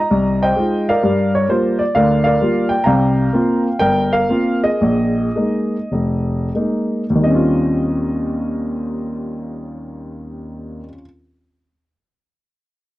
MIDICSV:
0, 0, Header, 1, 2, 480
1, 0, Start_track
1, 0, Tempo, 462963
1, 1068, Time_signature, 4, 2, 24, 8
1, 3942, Tempo, 485830
1, 4422, Tempo, 526316
1, 5382, Tempo, 579151
1, 5862, Tempo, 632911
1, 6342, Tempo, 668896
1, 10959, End_track
2, 0, Start_track
2, 0, Title_t, "Grand piano"
2, 0, Program_c, 0, 0
2, 0, Note_on_c, 0, 75, 64
2, 0, Note_on_c, 0, 82, 81
2, 111, Note_on_c, 0, 36, 62
2, 423, Note_off_c, 0, 75, 0
2, 439, Note_on_c, 0, 72, 57
2, 439, Note_on_c, 0, 75, 59
2, 442, Note_on_c, 0, 79, 83
2, 450, Note_off_c, 0, 82, 0
2, 527, Note_off_c, 0, 36, 0
2, 584, Note_on_c, 0, 56, 47
2, 594, Note_on_c, 0, 63, 44
2, 596, Note_on_c, 0, 65, 50
2, 883, Note_off_c, 0, 79, 0
2, 920, Note_on_c, 0, 74, 62
2, 922, Note_on_c, 0, 77, 81
2, 926, Note_off_c, 0, 56, 0
2, 931, Note_off_c, 0, 63, 0
2, 932, Note_off_c, 0, 65, 0
2, 932, Note_on_c, 0, 70, 63
2, 1031, Note_off_c, 0, 75, 0
2, 1032, Note_off_c, 0, 72, 0
2, 1065, Note_on_c, 0, 55, 59
2, 1071, Note_on_c, 0, 43, 64
2, 1367, Note_off_c, 0, 77, 0
2, 1398, Note_on_c, 0, 73, 76
2, 1486, Note_off_c, 0, 55, 0
2, 1489, Note_off_c, 0, 43, 0
2, 1540, Note_off_c, 0, 73, 0
2, 1542, Note_on_c, 0, 55, 50
2, 1546, Note_on_c, 0, 58, 40
2, 1550, Note_on_c, 0, 65, 57
2, 1553, Note_on_c, 0, 72, 70
2, 1833, Note_off_c, 0, 74, 0
2, 1839, Note_off_c, 0, 70, 0
2, 1855, Note_on_c, 0, 74, 74
2, 1881, Note_off_c, 0, 72, 0
2, 1882, Note_off_c, 0, 55, 0
2, 1884, Note_off_c, 0, 58, 0
2, 1885, Note_off_c, 0, 65, 0
2, 2004, Note_off_c, 0, 74, 0
2, 2020, Note_on_c, 0, 77, 87
2, 2025, Note_on_c, 0, 38, 70
2, 2029, Note_on_c, 0, 50, 68
2, 2035, Note_on_c, 0, 74, 58
2, 2041, Note_on_c, 0, 70, 55
2, 2306, Note_off_c, 0, 77, 0
2, 2321, Note_on_c, 0, 77, 79
2, 2323, Note_off_c, 0, 74, 0
2, 2334, Note_off_c, 0, 70, 0
2, 2339, Note_on_c, 0, 74, 63
2, 2349, Note_on_c, 0, 70, 53
2, 2433, Note_off_c, 0, 38, 0
2, 2435, Note_off_c, 0, 50, 0
2, 2498, Note_on_c, 0, 58, 43
2, 2500, Note_on_c, 0, 55, 54
2, 2510, Note_on_c, 0, 65, 54
2, 2769, Note_off_c, 0, 77, 0
2, 2790, Note_on_c, 0, 79, 80
2, 2832, Note_off_c, 0, 55, 0
2, 2832, Note_off_c, 0, 58, 0
2, 2837, Note_off_c, 0, 65, 0
2, 2927, Note_off_c, 0, 74, 0
2, 2932, Note_off_c, 0, 70, 0
2, 2943, Note_on_c, 0, 82, 75
2, 2946, Note_off_c, 0, 79, 0
2, 2963, Note_on_c, 0, 77, 59
2, 2970, Note_on_c, 0, 79, 52
2, 2971, Note_on_c, 0, 36, 69
2, 2974, Note_on_c, 0, 48, 70
2, 3393, Note_off_c, 0, 36, 0
2, 3395, Note_off_c, 0, 48, 0
2, 3456, Note_on_c, 0, 58, 48
2, 3461, Note_on_c, 0, 60, 48
2, 3467, Note_on_c, 0, 65, 58
2, 3731, Note_off_c, 0, 82, 0
2, 3801, Note_off_c, 0, 58, 0
2, 3803, Note_off_c, 0, 60, 0
2, 3807, Note_off_c, 0, 65, 0
2, 3898, Note_off_c, 0, 77, 0
2, 3902, Note_off_c, 0, 79, 0
2, 3934, Note_on_c, 0, 79, 97
2, 3941, Note_on_c, 0, 70, 69
2, 3953, Note_on_c, 0, 31, 64
2, 4237, Note_off_c, 0, 79, 0
2, 4252, Note_off_c, 0, 70, 0
2, 4263, Note_on_c, 0, 77, 87
2, 4267, Note_on_c, 0, 70, 63
2, 4365, Note_off_c, 0, 31, 0
2, 4427, Note_on_c, 0, 58, 49
2, 4433, Note_on_c, 0, 60, 41
2, 4436, Note_on_c, 0, 65, 53
2, 4705, Note_off_c, 0, 77, 0
2, 4737, Note_on_c, 0, 68, 50
2, 4739, Note_on_c, 0, 75, 77
2, 4755, Note_off_c, 0, 58, 0
2, 4758, Note_off_c, 0, 60, 0
2, 4760, Note_off_c, 0, 65, 0
2, 4857, Note_off_c, 0, 70, 0
2, 4899, Note_on_c, 0, 34, 58
2, 4903, Note_on_c, 0, 46, 59
2, 5322, Note_off_c, 0, 34, 0
2, 5325, Note_off_c, 0, 46, 0
2, 5396, Note_on_c, 0, 56, 45
2, 5403, Note_on_c, 0, 58, 39
2, 5405, Note_on_c, 0, 63, 47
2, 5725, Note_off_c, 0, 56, 0
2, 5728, Note_off_c, 0, 58, 0
2, 5729, Note_off_c, 0, 63, 0
2, 5860, Note_on_c, 0, 29, 60
2, 6279, Note_off_c, 0, 29, 0
2, 6312, Note_off_c, 0, 68, 0
2, 6313, Note_off_c, 0, 75, 0
2, 6337, Note_on_c, 0, 56, 38
2, 6345, Note_on_c, 0, 58, 39
2, 6349, Note_on_c, 0, 63, 47
2, 6682, Note_off_c, 0, 56, 0
2, 6686, Note_off_c, 0, 58, 0
2, 6688, Note_off_c, 0, 63, 0
2, 6735, Note_on_c, 0, 39, 55
2, 6774, Note_on_c, 0, 51, 50
2, 6809, Note_on_c, 0, 55, 51
2, 6833, Note_on_c, 0, 75, 63
2, 6846, Note_on_c, 0, 60, 47
2, 6882, Note_on_c, 0, 61, 52
2, 6913, Note_on_c, 0, 65, 56
2, 9381, Note_off_c, 0, 39, 0
2, 9420, Note_off_c, 0, 51, 0
2, 9450, Note_off_c, 0, 75, 0
2, 9455, Note_off_c, 0, 55, 0
2, 9492, Note_off_c, 0, 60, 0
2, 9528, Note_off_c, 0, 61, 0
2, 9559, Note_off_c, 0, 65, 0
2, 10959, End_track
0, 0, End_of_file